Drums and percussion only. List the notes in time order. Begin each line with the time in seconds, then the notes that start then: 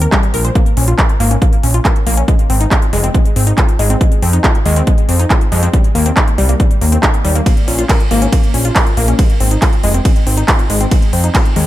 0.02 closed hi-hat
0.12 kick, clap, closed hi-hat
0.23 closed hi-hat
0.34 open hi-hat
0.45 closed hi-hat
0.55 kick, closed hi-hat
0.66 closed hi-hat
0.77 open hi-hat
0.88 closed hi-hat
0.99 kick, clap, closed hi-hat
1.09 closed hi-hat
1.20 open hi-hat
1.31 closed hi-hat
1.42 kick, closed hi-hat
1.53 closed hi-hat
1.63 open hi-hat
1.74 closed hi-hat
1.85 kick, clap, closed hi-hat
1.96 closed hi-hat
2.07 open hi-hat
2.17 closed hi-hat
2.28 kick, closed hi-hat
2.39 closed hi-hat
2.50 open hi-hat
2.61 closed hi-hat
2.71 kick, clap, closed hi-hat
2.82 closed hi-hat
2.93 open hi-hat
3.04 closed hi-hat
3.15 kick, closed hi-hat
3.25 closed hi-hat
3.36 open hi-hat
3.47 closed hi-hat
3.58 kick, clap, closed hi-hat
3.69 closed hi-hat
3.79 open hi-hat
3.90 closed hi-hat
4.01 kick, closed hi-hat
4.12 closed hi-hat
4.23 open hi-hat
4.33 closed hi-hat
4.44 kick, clap, closed hi-hat
4.55 closed hi-hat
4.66 open hi-hat
4.76 closed hi-hat
4.87 kick, closed hi-hat
4.98 closed hi-hat
5.09 open hi-hat
5.20 closed hi-hat
5.30 kick, clap, closed hi-hat
5.41 closed hi-hat
5.52 open hi-hat
5.63 closed hi-hat
5.74 kick, closed hi-hat
5.84 closed hi-hat
5.95 open hi-hat
6.06 closed hi-hat
6.17 kick, clap, closed hi-hat
6.28 closed hi-hat
6.38 open hi-hat
6.49 closed hi-hat
6.60 kick, closed hi-hat
6.71 closed hi-hat
6.81 open hi-hat
6.92 closed hi-hat
7.03 kick, clap, closed hi-hat
7.14 closed hi-hat
7.25 open hi-hat
7.36 closed hi-hat
7.46 kick, closed hi-hat, ride
7.57 closed hi-hat
7.68 open hi-hat
7.79 closed hi-hat
7.89 kick, clap, closed hi-hat, ride
8.00 closed hi-hat
8.11 open hi-hat
8.22 closed hi-hat
8.32 kick, closed hi-hat, ride
8.43 closed hi-hat
8.54 open hi-hat
8.65 closed hi-hat
8.76 kick, clap, closed hi-hat, ride
8.86 closed hi-hat
8.97 open hi-hat
9.08 closed hi-hat
9.19 kick, closed hi-hat, ride
9.30 closed hi-hat
9.40 open hi-hat
9.51 closed hi-hat
9.62 kick, clap, closed hi-hat, ride
9.73 closed hi-hat
9.84 open hi-hat
9.94 closed hi-hat
10.05 kick, closed hi-hat, ride
10.16 closed hi-hat
10.27 open hi-hat
10.37 closed hi-hat
10.48 kick, clap, closed hi-hat, ride
10.59 closed hi-hat
10.70 open hi-hat
10.81 closed hi-hat
10.91 kick, closed hi-hat, ride
11.02 closed hi-hat
11.13 open hi-hat
11.24 closed hi-hat
11.35 kick, clap, closed hi-hat, ride
11.45 closed hi-hat
11.56 open hi-hat